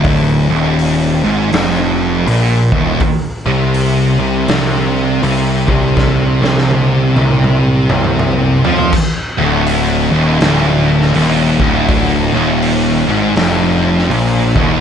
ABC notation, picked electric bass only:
X:1
M:4/4
L:1/8
Q:"Swing" 1/4=81
K:Dm
V:1 name="Picked electric bass" clef=bass
D,,, _E,,,2 ^G,,, F,,,2 B,,, E,,, | z C,,2 C,, C,,2 C,, C,,- | C,, C,,2 C,,2 C,,2 F,, | z D,,,2 _E,,, D,,,2 E,,, D,,,- |
D,,, _E,,,2 ^G,,, F,,,2 B,,, E,,, |]